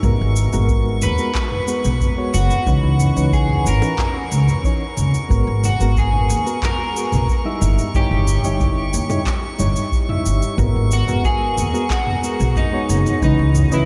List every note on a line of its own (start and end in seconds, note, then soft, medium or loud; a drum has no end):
0.00 0.17 G#1 loud
0.00 0.49 G#3 medium
0.00 0.49 B3 medium
0.00 0.49 F#4 medium
0.00 13.85 C#6 medium
0.00 kick loud
0.00 mid tom medium
0.00 cabasa soft
0.04 0.49 A#4 medium
0.21 0.48 G#1 medium
0.36 cabasa medium
0.52 1.05 G#1 medium
0.52 1.15 G#3 medium
0.52 1.15 B3 medium
0.52 1.15 F#4 medium
0.52 1.15 A#4 medium
0.52 mid tom medium
0.52 cabasa soft
0.69 kick loud
0.69 cabasa soft
1.02 1.17 D#2 medium
1.02 1.98 B4 loud
1.02 mid tom medium
1.02 cabasa medium
1.18 1.30 G#3 medium
1.18 1.30 B3 medium
1.18 1.30 F#4 medium
1.18 1.30 A#4 medium
1.18 cabasa soft
1.35 kick loud
1.35 clap medium
1.35 cabasa soft
1.52 mid tom medium
1.67 2.13 G#3 medium
1.67 2.13 B3 medium
1.67 2.14 F#4 medium
1.67 2.14 B4 medium
1.67 cabasa medium
1.84 1.99 B1 medium
1.84 cabasa soft
2.01 kick medium
2.01 mid tom medium
2.01 cabasa soft
2.17 2.63 G#3 medium
2.17 2.63 B3 medium
2.17 2.63 F#4 medium
2.17 2.63 C#5 medium
2.34 2.48 F#1 medium
2.34 3.33 F#4 medium
2.34 cabasa medium
2.50 mid tom medium
2.50 cabasa soft
2.66 2.81 C#2 medium
2.66 3.13 E3 medium
2.66 3.13 C#4 medium
2.66 3.13 D#4 medium
2.66 3.13 B4 medium
2.66 kick loud
2.66 cabasa soft
2.83 3.11 C#2 medium
3.00 mid tom medium
3.00 cabasa medium
3.15 3.68 C#2 medium
3.15 3.78 E3 medium
3.15 3.78 C#4 medium
3.15 3.79 D#4 medium
3.15 3.79 B4 medium
3.15 cabasa soft
3.32 3.67 G#4 loud
3.32 kick loud
3.32 cabasa soft
3.49 mid tom medium
3.66 3.80 G#1 medium
3.66 4.95 A#4 medium
3.66 cabasa medium
3.82 3.93 E3 medium
3.82 3.94 C#4 medium
3.82 3.94 D#4 medium
3.82 3.94 B4 medium
3.82 high bongo medium
3.82 cabasa soft
3.98 kick loud
3.98 clap medium
3.98 mid tom medium
3.98 cabasa soft
4.32 4.46 C#2 medium
4.32 cabasa medium
4.48 mid tom medium
4.48 cabasa soft
4.64 4.82 E3 medium
4.64 4.83 C#4 medium
4.64 4.83 D#4 medium
4.64 4.83 C#5 medium
4.64 kick loud
4.64 cabasa soft
4.97 5.12 C#2 medium
4.97 mid tom medium
4.97 cabasa medium
5.14 cabasa soft
5.29 5.45 G#1 medium
5.29 5.75 G#3 medium
5.29 5.76 B3 medium
5.29 5.76 F#4 medium
5.29 5.76 A#4 medium
5.29 kick loud
5.29 cabasa soft
5.47 5.75 G#1 medium
5.64 5.98 F#4 medium
5.64 mid tom medium
5.64 cabasa medium
5.79 6.31 G#1 medium
5.79 6.42 G#3 medium
5.79 6.42 B3 medium
5.79 6.43 F#4 medium
5.79 6.43 A#4 medium
5.79 cabasa soft
5.96 6.65 G#4 loud
5.96 kick loud
5.96 cabasa soft
6.13 mid tom medium
6.30 6.44 D#2 medium
6.30 cabasa medium
6.46 6.57 G#3 medium
6.46 6.57 B3 medium
6.46 6.58 F#4 medium
6.46 6.58 A#4 loud
6.46 cabasa soft
6.62 7.95 A#4 loud
6.62 kick medium
6.62 clap medium
6.62 mid tom medium
6.62 cabasa soft
6.95 7.41 G#3 medium
6.95 7.42 B3 medium
6.95 7.42 F#4 medium
6.95 7.42 A#4 medium
6.95 cabasa medium
7.12 7.26 B1 medium
7.12 mid tom medium
7.12 cabasa soft
7.28 kick medium
7.28 cabasa soft
7.45 7.91 G3 medium
7.45 7.91 D#4 medium
7.45 7.91 E4 medium
7.45 7.91 E5 medium
7.62 7.76 G1 medium
7.62 mid tom medium
7.62 cabasa medium
7.78 cabasa soft
7.94 8.09 G1 loud
7.94 8.40 G3 medium
7.94 8.40 D#4 medium
7.94 8.41 E4 medium
7.94 9.23 G4 medium
7.94 8.41 C#5 medium
7.94 kick loud
7.94 cabasa soft
8.11 8.39 G1 medium
8.11 mid tom medium
8.27 cabasa medium
8.43 8.95 G1 medium
8.43 9.06 G3 medium
8.43 9.06 D#4 medium
8.43 9.06 E4 medium
8.43 9.07 C#5 medium
8.43 cabasa soft
8.60 kick medium
8.60 mid tom medium
8.60 cabasa soft
8.93 9.08 D#2 medium
8.93 cabasa medium
9.10 9.21 G3 medium
9.10 9.21 D#4 medium
9.10 9.22 E4 medium
9.10 9.22 C#5 medium
9.10 mid tom medium
9.10 high bongo soft
9.10 cabasa soft
9.26 kick medium
9.26 clap medium
9.26 cabasa soft
9.58 9.73 G1 medium
9.58 10.05 G3 medium
9.58 10.05 D#4 medium
9.58 10.05 E4 medium
9.58 10.05 C#5 medium
9.58 mid tom medium
9.58 cabasa medium
9.76 cabasa soft
9.92 kick medium
9.92 cabasa soft
10.08 10.54 G3 medium
10.08 10.55 D#4 medium
10.08 10.55 E4 medium
10.08 10.55 E5 loud
10.08 mid tom medium
10.26 10.40 G1 medium
10.26 cabasa medium
10.42 cabasa soft
10.57 10.72 G#1 loud
10.57 11.03 G#3 medium
10.57 11.04 B3 medium
10.57 11.04 F#4 medium
10.57 11.04 A#4 medium
10.57 kick loud
10.57 mid tom medium
10.57 cabasa soft
10.76 11.03 G#1 medium
10.91 11.25 F#4 loud
10.91 cabasa medium
11.07 11.60 G#1 medium
11.07 11.70 G#3 medium
11.07 11.70 B3 medium
11.07 11.70 F#4 medium
11.07 11.70 A#4 loud
11.07 mid tom medium
11.07 cabasa soft
11.24 11.91 G#4 loud
11.24 kick loud
11.24 cabasa soft
11.58 11.72 D#2 medium
11.58 mid tom medium
11.58 cabasa medium
11.73 11.85 G#3 medium
11.73 11.85 B3 medium
11.73 11.85 F#4 medium
11.73 11.85 A#4 loud
11.73 cabasa soft
11.90 12.59 F#4 loud
11.90 kick medium
11.90 clap medium
11.90 cabasa soft
12.07 mid tom medium
12.23 12.69 G#3 medium
12.23 12.69 B3 medium
12.23 12.69 F#4 medium
12.23 12.70 A#4 medium
12.23 cabasa medium
12.40 12.54 B1 medium
12.40 cabasa soft
12.56 13.23 D#4 medium
12.56 kick medium
12.56 mid tom medium
12.56 cabasa soft
12.72 13.18 G#3 medium
12.72 13.18 B3 medium
12.72 13.18 F#4 medium
12.72 13.19 C#5 medium
12.89 13.03 F#1 medium
12.89 cabasa medium
13.06 mid tom medium
13.06 cabasa soft
13.22 13.36 C#2 loud
13.22 13.68 E3 medium
13.22 13.68 C#4 medium
13.22 13.68 D#4 medium
13.22 13.74 D#4 medium
13.22 13.68 B4 medium
13.22 kick loud
13.22 cabasa soft
13.39 13.66 C#2 medium
13.55 mid tom medium
13.55 cabasa medium
13.71 13.85 C#2 medium
13.71 13.85 E3 medium
13.71 13.85 C#4 medium
13.71 13.85 E4 medium
13.71 13.85 B4 loud
13.71 13.85 D#5 medium
13.71 cabasa soft